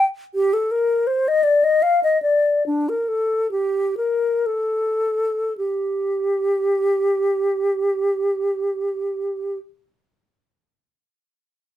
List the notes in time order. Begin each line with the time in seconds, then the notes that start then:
0.35 G4
0.53 A4
0.71 A#4
1.07 C5
1.28 D#5
1.43 D5
1.64 D#5
1.82 F5
2.03 D#5
2.22 D5
2.66 D4
2.89 A#4
3.08 A4
3.51 G4
3.97 A#4
4.46 A4
5.58 G4